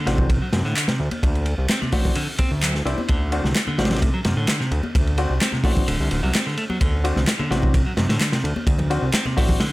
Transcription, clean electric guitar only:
0.07 C3
0.42 F#3
0.53 C3
0.65 D3
0.88 C3
1.69 C4
1.81 C3
1.93 A3
2.16 D3
2.39 C4
2.62 F#3
3.09 D3
3.68 D3
3.79 C3
4.14 F#3
4.25 C3
4.37 D3
4.60 C3
5.41 C4
5.53 C3
5.65 A3
5.88 D3
6.23 F#3
6.34 C4
6.46 D3
6.58 A3
6.70 F#3
6.81 D3
7.39 D3
7.51 C3
7.86 F#3
7.98 C3
8.09 D3
8.33 C3
9.14 C4
9.26 C3
9.37 A3
9.60 D3

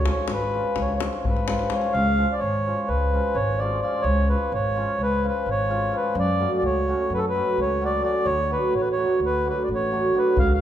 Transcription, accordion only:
0.11 C#5
0.33 B4
0.82 C#5
0.95 C#5
1.14 C#5
1.20 C#5
1.29 B4
1.74 C#5
1.93 F5
2.32 D5
2.40 C#5
2.88 B4
3.35 C#5
3.58 D5
3.82 D5
4.02 C#5
4.29 B4
4.54 C#5
5.03 B4
5.28 B4
5.51 C#5
5.96 B4
6.19 D5
6.58 D5
6.66 C#5
7.14 A4 B4
7.29 B4
7.62 C#5
7.85 D5
8.04 D5
8.26 C#5
8.52 B4
8.76 C#5
8.81 B4
8.92 C#5
9.26 B4
9.49 B4
9.63 D5
9.75 C#5
10.18 B4
10.39 F5
10.54 F5

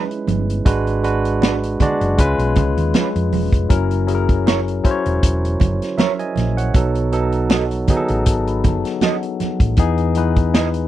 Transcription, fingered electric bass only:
0.28 G1
0.66 G#1
1.81 muted fingered electric bass stroke
2.01 F#1
2.19 C#2
2.38 B1
2.57 C#2
2.77 D#2
3.15 F2
3.33 E1
3.53 F1
3.70 F#1
4.85 muted fingered electric bass stroke
5.06 E1
5.24 E1
5.61 F#1
6.37 A#1
6.75 B1
8.10 A1
8.27 G#1
8.65 F#1
9.41 muted fingered electric bass stroke
9.61 A1
9.78 E2

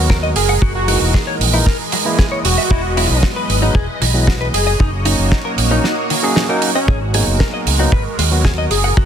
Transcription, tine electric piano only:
Already playing: F#3 B3 F#4
0.87 E3 G#3 A#3 D#4
1.53 E3 G#3 A#3 D#4
2.05 E3 G#3 A#3 E4
2.96 F#3 G#3 B3
3.62 F#3 G#3 B3 D#4
4.14 E3 F#3 G#3 B3
5.05 F#3 A#3 C#4 D#4
5.70 F#3 A#3 C#4 D#4
6.23 F#3 A#3 C#4 G#4
6.49 F#3 A#3 C#4 D#4
7.13 F#3 A#3 B3 D#4
7.79 F#3 A#3 B3 D#4
8.31 F#3 B3 F#4

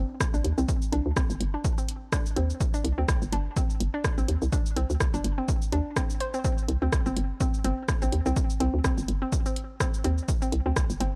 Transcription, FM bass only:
0.34 A#1
0.44 D#2
0.58 C2
0.92 C2
1.06 D2
1.16 C2
1.30 G1
1.40 G1
2.36 D#2
2.84 C2
2.98 D2
3.08 C2
3.22 G1
3.32 G1
3.80 G1
4.18 A#1
4.28 D#2
4.42 C2
4.76 C2
4.90 D2
5.00 C2
5.14 G1
5.24 G1
5.72 D#2
6.68 C2
6.82 D2
6.92 C2
7.06 G1
7.17 G1
7.64 G1
8.02 A#1
8.12 D#2
8.26 C2
8.60 C2
8.74 D2
8.84 C2
8.98 G1
9.08 G1
10.04 D#2
10.52 C2
10.66 D2
10.76 C2
10.90 G1
11.00 G1

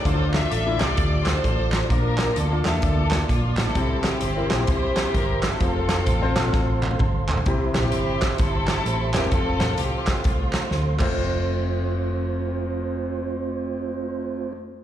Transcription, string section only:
0.05 F4 A4 C5
0.34 A4 E5
0.79 F4 A4 D5
1.25 F4 A4 C5
1.90 D4 F4 A#4
2.36 A4
2.65 A4
2.84 D4 F4 A4
3.30 F4
3.59 C4 E4 A4
4.06 C4 E4 G4
4.69 E4 G4 C5
5.16 A#4
5.45 C4 F4 A4
7.76 C4 E4 G4
8.39 C4 E4 A4
9.14 G4
9.32 C4 F4 A4
9.80 C4 G4
10.26 A3 C4 F4

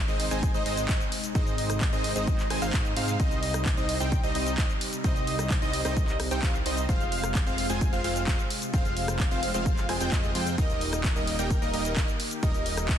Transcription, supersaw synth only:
0.08 G#3 C4 D#4 C5 D#5
0.31 G#3 C4 D#4 C5 G#5
0.54 G#3 C4 D#4 C5 D#5
0.66 G#3 C4 D#4 C5 D#5
0.89 G#3 C4 D#4 D#5
1.35 G#3 C4 D#4 C5 D#5
1.93 G#3 C4 D#4 C5 D#5
2.16 G#3 C4 D#4 C5 D#5
2.50 G#3 C4 D#4 C5 G#5
2.62 G#3 C4 D#4 C5 F5
2.74 G#3 C4 D#4 C5 D#5
2.97 G#3 C4 D#4 C5 F5
3.20 G3 C4 D#4 C5 D#5
3.77 G3 C4 D#4 C5 D#5
4.00 G3 C4 D#4 C5 G5
4.24 G3 C4 D#4 C5 D#5
4.35 G3 C4 D#4 C5 D#5
4.58 G3 C4 D#4 C5 D#5
5.04 G3 C4 D#4 C5 D#5
5.62 G3 C4 D#4 C5 D#5
5.85 G3 C4 D#4 C5 D#5
6.31 G3 C4 D#4 C5 G5
6.43 G3 C4 D#4 C5 F5
6.66 G3 C4 D#4 C5 D#5
6.89 G#3 C4 F4 C5 F5
7.47 G#3 C4 F4 C5 F5
7.70 G#3 C4 F4 C5 G#5
7.93 G#3 C4 F4 C5 F5
8.04 G#3 C4 F4 C5 F5
8.27 G#3 C4 F4 C5 F5
8.74 G#3 C4 F4 C5 F5
9.31 G#3 C4 F4 C5 F5
9.54 G#3 C4 F4 C5 F5
9.89 G#3 C4 F4 C5 G#5
10.01 G#3 C4 F4 C5 G5
10.12 G#3 C4 F4 C5 D#5
10.35 G#3 C4 F4 C5 G5
10.58 G3 A#3 D#4 A#4 D#5
11.16 G3 A#3 D#4 A#4 D#5
11.39 G3 A#3 D#4 A#4 G5
11.62 G3 A#3 D#4 A#4 D#5
11.74 G3 A#3 D#4 A#4 D#5
11.97 G3 A#3 D#4 A#4 D#5
12.43 G3 A#3 D#4 A#4 D#5

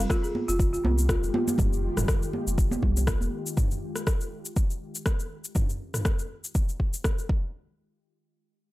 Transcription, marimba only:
0.10 F4
0.23 G#4
0.48 F4
0.59 F4
0.73 F4
0.84 C4
1.09 F4
1.34 F4

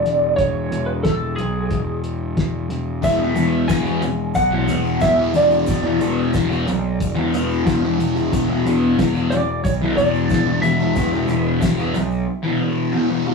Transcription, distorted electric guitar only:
3.02 E2 B2 E3
3.19 B2 E3
3.35 E2 B2 E3
3.68 E2 B2 E3
3.85 B2 E3
4.02 muted distorted electric guitar stroke
4.51 B2 E3
4.68 E2 B2 E3
5.00 E2 B2 E3
5.18 B2 E3
5.33 E2 B2 E3
5.50 B2 E3
5.67 E2 B2 E3
5.84 B2 E3
5.99 E2 B2 E3
6.33 E2 B2 E3
6.49 B2 E3
6.67 muted distorted electric guitar stroke
7.15 B2 E3
7.32 E2 B2 E3
7.65 E2 B2 E3
7.82 B2 E3
7.99 E2 B2 E3
8.16 B2 E3
8.32 E2 B2 E3
8.50 B2 E3
8.66 E2 B2 E3
8.99 E2 B2 E3
9.15 B2 E3
9.33 muted distorted electric guitar stroke
9.81 B2 E3
9.98 E2 B2 E3
10.31 E2 B2 E3
10.47 B2 E3
10.62 E2 B2 E3
10.80 B2 E3
10.96 E2 B2 E3
11.13 B2 E3
11.28 E2 B2 E3
11.61 E2 B2 E3
11.78 B2 E3
11.95 muted distorted electric guitar stroke
12.43 B2 E3
12.60 E2 B2 E3
12.93 E2 B2 E3
13.10 B2 E3
13.26 E2 B2 E3

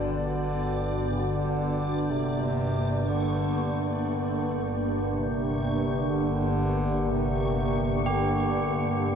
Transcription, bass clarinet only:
0.09 D3
1.10 D3
2.11 C3
3.10 D3
4.10 D3
5.10 C3
6.10 D3
7.11 C3
8.10 D3
9.11 D3

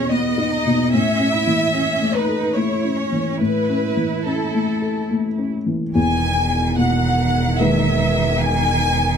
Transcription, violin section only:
Already playing: C#5
0.10 D#5
0.92 E5
2.14 B4
2.55 C#5
3.41 B4
4.26 A4
5.96 G#5
6.78 F#5
7.59 E5
8.41 G#5

